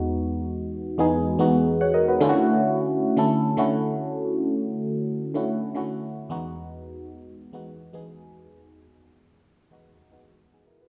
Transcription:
X:1
M:4/4
L:1/16
Q:1/4=110
K:Edor
V:1 name="FM electric piano"
z12 z [cf] [_B^d] [F=B]- | [FB] z12 z3 | z16 | z16 |
z12 z [^D^G] [E_B] [F=B] |]
V:2 name="FM electric piano"
z6 z [E,,^G,B,^D^G]2 z [E,,G,B,DF]3 z3 | [D,A,CE=F^F]6 z [D,A,CEA]2 z [D,A,CEF]6 | z6 z [D,A,CEF]2 z [D,A,CEF]3 z [E,,^G,B,^DF]2- | [E,,^G,B,^DF]4 z3 [E,,G,B,DF]2 z [E,,G,B,D^G]6 |
z6 z [E,,^G,B,^DF]2 z [E,,G,B,DF]3 z3 |]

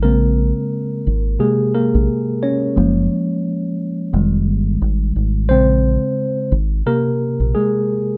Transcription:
X:1
M:4/4
L:1/16
Q:"Swing 16ths" 1/4=88
K:Ab
V:1 name="Tine electric piano"
[B,B]8 [A,A]2 [B,B]4 [Dd]2- | [Dd]6 z8 z2 | c6 z2 [B,B]4 [A,A]4 |]
V:2 name="Tine electric piano" clef=bass
[D,A,C]2 z6 [C,B,G]2 z6 | [F,A,B,]8 [E,G,A,]2 z6 | [D,A,C]6 z2 [C,G]6 z2 |]
V:3 name="Fingered electric bass" clef=bass
B,,,3 z3 A,,,2 z3 B,,, z4 | _G,,,2 z6 F,,,2 =G,,,2 A,,,2 A,,,2 | B,,,3 z3 A,,,2 z3 B,,, z4 |]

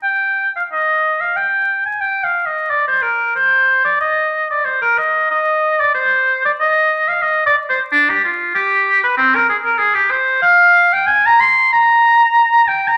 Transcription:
X:1
M:4/4
L:1/16
Q:1/4=92
K:Eb
V:1 name="Oboe"
g3 f e3 f g3 a (3g2 f2 e2 | d c B2 c3 d e3 d c B e2 | e3 d c3 d e3 f (3e2 d2 c2 | D G F2 G3 _c =C B A B A G =c2 |
f3 g a b c'2 b6 g b |]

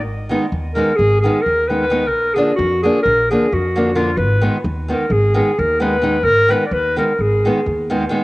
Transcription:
X:1
M:9/8
L:1/16
Q:3/8=87
K:none
V:1 name="Clarinet"
z6 _B2 _A2 A2 B2 _c4 | _B2 _A2 _G2 A2 B2 A2 G4 F2 | _c3- c/2 z2 z/2 _B2 _A2 A2 B2 c4 | _B2 _c3/2 d/2 c2 B2 _A6 z4 |]
V:2 name="Nylon-string guitar"
z2 [_E,_A,_C_E]2 z2 [E,A,CE]2 z2 [E,A,CE]2 z2 [E,A,CE]2 [E,A,CE]2 | z2 [D,F,_B,D]2 z2 [D,F,B,D]2 z2 [D,F,B,D]2 z2 [D,F,B,D]2 [D,F,B,D]2 | z2 [_E,_A,_C_E]2 z2 [E,A,CE]2 z2 [E,A,CE]2 z2 [E,A,CE]2 [E,A,CE]2 | z2 [_E,_A,_C_E]2 z2 [E,A,CE]2 z2 [E,A,CE]2 z2 [E,A,CE]2 [E,A,CE]2 |]
V:3 name="Upright bass" clef=bass
_A,,,4 _E,,4 A,,,4 E,,6 | _B,,,4 F,,4 B,,,4 F,,6 | _A,,,4 _E,,4 A,,,4 E,,6 | _A,,,4 _E,,4 A,,,4 E,,6 |]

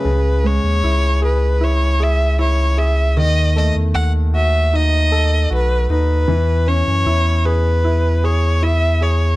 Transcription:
X:1
M:4/4
L:1/16
Q:1/4=77
K:C#m
V:1 name="Violin"
B2 c4 B2 c2 e2 c2 e2 | d2 d2 f2 e2 d4 B2 B2- | B2 c4 B4 c2 e2 c2 |]
V:2 name="Grand piano"
C,2 G,2 E2 G2 E2 G2 E2 G2 | D,2 A,4 F2 D2 A2 F2 D2 | E,2 C2 E2 G2 E2 G2 E2 G2 |]
V:3 name="Sub bass" clef=bass
C,,3 D,, C,,12 | D,,3 E,, D,,8 B,,,2 D,,2 | E,,3 F,, E,,12 |]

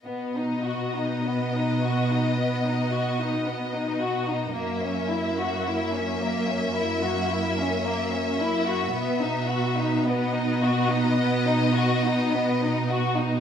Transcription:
X:1
M:4/4
L:1/16
Q:1/4=54
K:B
V:1 name="Violin section"
d16 | e16- | e4 d12 |]
V:2 name="Violin section"
B, D F D B, D F D B, D F D B, D F D | A, C E F E C A, C E F E C A, C E F | B, D F D B, D F D B, D F D B, D F D |]
V:3 name="Viola section"
B,16 | A,16 | B,16 |]
V:4 name="Cello section" clef=bass
B,,16 | F,,16 | B,,16 |]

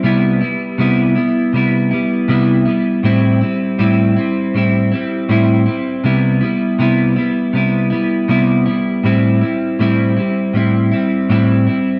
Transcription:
X:1
M:4/4
L:1/8
Q:"Swing 16ths" 1/4=80
K:Am
V:1 name="Clean electric guitar"
[C,G,B,E] [G,B,E] [C,G,B,E] [G,B,E] [C,G,B,E] [G,B,E] [C,G,B,E] [G,B,E] | [A,,G,CE] [G,CE] [A,,G,CE] [G,CE] [A,,G,CE] [G,CE] [A,,G,CE] [G,CE] | [C,G,B,E] [G,B,E] [C,G,B,E] [G,B,E] [C,G,B,E] [G,B,E] [C,G,B,E] [G,B,E] | [A,,G,CE] [G,CE] [A,,G,CE] [G,CE] [A,,G,CE] [G,CE] [A,,G,CE] [G,CE] |]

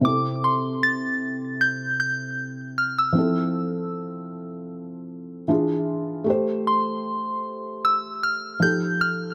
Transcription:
X:1
M:4/4
L:1/16
Q:"Swing 16ths" 1/4=77
K:C
V:1 name="Synth bell"
d'2 c'2 a'4 g'2 g'4 f' e'- | e'4- e' z8 z3 | z2 c'6 e'2 f'2 g'2 f'2 |]
V:2 name="Felt piano"
[C,CEA]16 | [F,CEA]12 [E,DF^G]4 | [A,GAc]12 [F,_EGA]4 |]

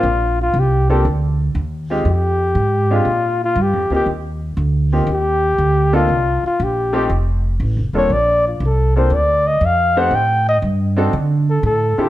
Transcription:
X:1
M:4/4
L:1/8
Q:"Swing" 1/4=119
K:Bb
V:1 name="Flugelhorn"
F F G G z4 | G3 F2 F G G | z4 G3 F- | F F G G z3 ^c |
d F A c d e f ^f | g e z3 A A G |]
V:2 name="Upright piano"
z3 [B,CDFA] z3 [_A,CEFG] | z3 [_A,CDFG] z3 [B,CEFG] | z3 [B,CEFG] z3 [B,CDEA] | z3 [A,CEFG] z3 [B,CDFA] |
z3 [B,CDFA] z3 [A,CEGc] | z3 [CDE^FA] z3 [D,C=E=FGA] |]
V:3 name="Upright bass" clef=bass
B,,,2 C,,2 D,,2 E,,2 | F,,2 _A,,2 B,,2 (3G,, F,, D,, | E,,2 D,,2 E,,2 D,,2 | C,, z B,,,2 F,,,2 (3A,,, F,,, E,,, |
B,,,2 C,,2 D,,2 F,,2 | A,,2 G,,2 D,2 A,, z |]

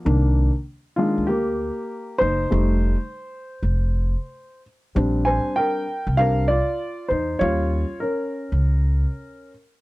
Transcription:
X:1
M:4/4
L:1/16
Q:"Swing 16ths" 1/4=98
K:Cm
V:1 name="Upright piano"
z6 [A,F]2 [B,G]6 [Ec]2- | [Ec]12- [Ec]2 z2 | z2 [ca]2 [Bg]4 [Bf]2 [Fd]4 [Ec]2 | _d4 [_DB]8- [DB]2 z2 |]
V:2 name="Upright piano"
[E,B,D]2 z4 [E,B,D]2 z8 | [G,=A,E]2 z12 z2 | [G,CD]6 z2 [G,CD]2 z6 | [G,_DF]2 z12 z2 |]
V:3 name="Upright bass" clef=bass
C,,3 z4 D,,4 z3 _G,,,2 | F,,,3 z4 F,,,4 z4 z | B,,,3 z4 C,,4 z3 =E,,2 | E,,3 z4 _D,,4 z4 z |]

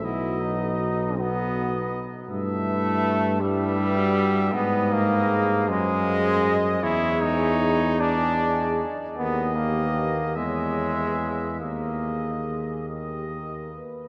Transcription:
X:1
M:6/8
L:1/16
Q:3/8=52
K:Em
V:1 name="Cornet"
^d6 d4 z2 | e6 e6 | [K:G#m] d6 d6 | c6 =d4 z2 |
d6 e6 | d6 d4 z2 |]
V:2 name="French horn section"
B6 B6 | B6 B6 | [K:G#m] B6 ^B6 | G6 G6 |
A3 B3 c3 B3 | A6 =G2 A2 B2 |]
V:3 name="Euphonium"
F6 F4- F z | E6 E3 F3 | [K:G#m] G6 G6 | G6 G4- G z |
=G6 ^G6 | G6 =G4 z2 |]
V:4 name="Trombone"
E2 ^D4 B,4 z2 | A,6 G,6 | [K:G#m] B,2 A,4 G,6 | E2 D4 =D4 z2 |
B,2 A,4 G,6 | A,6 z6 |]
V:5 name="Tuba" clef=bass
B,,,8- B,,,2 z2 | G,,12 | [K:G#m] G,,6 F,,6 | E,,8- E,,2 z2 |
D,,6 E,,6 | D,,8- D,,2 z2 |]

